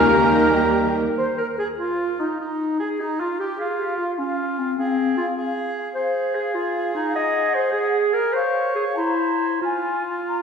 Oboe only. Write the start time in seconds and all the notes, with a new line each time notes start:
Already playing: A#4
1.18 C5
1.38 A#4
1.59 G#4
1.80 F4
2.20 D#4
2.40 D#4
2.80 G#4
3.00 D#4
3.20 F4
3.40 G4
3.60 F4
4.19 F4
4.78 G#4
5.37 G#4
5.96 G#4
8.35 C#5
8.97 C5
9.62 F4